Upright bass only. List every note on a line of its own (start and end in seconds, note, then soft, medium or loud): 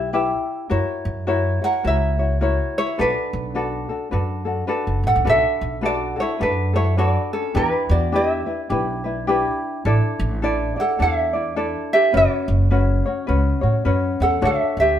0.00 0.31 B1 medium
0.71 0.82 F#2 medium
1.05 1.57 F#2 medium
1.85 2.58 C#2 medium
2.99 3.10 B1 loud
3.33 3.85 B1 medium
4.13 4.61 F#2 medium
4.87 5.02 F#1 medium
5.03 5.14 A1 medium
5.16 5.26 B1 medium
5.27 5.38 B1 loud
5.61 6.13 B1 medium
6.41 7.15 F#2 medium
7.55 7.66 E2 loud
7.89 8.42 E2 loud
8.70 9.45 B1 loud
9.85 9.96 A1 loud
10.19 10.71 A1 loud
11.00 11.74 E2 medium
12.14 12.25 F#1 loud
12.48 13.00 F#1 loud
13.29 13.51 C#2 medium
13.63 13.84 A2 medium
13.85 14.16 F#2 medium
14.20 14.41 E2 medium
14.42 14.54 D2 loud
14.77 14.99 D2 medium